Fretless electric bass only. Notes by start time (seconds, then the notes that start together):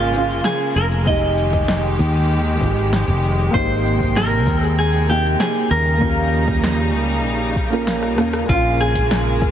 Already playing: G#1
0.76 F1
1.99 D#2
2.61 G#1
3.08 F1
3.54 G#1
4.47 D#2
5.71 D#2
6.94 C#2
7.25 A#1
8.18 D#2
8.49 A#1
9.42 G#1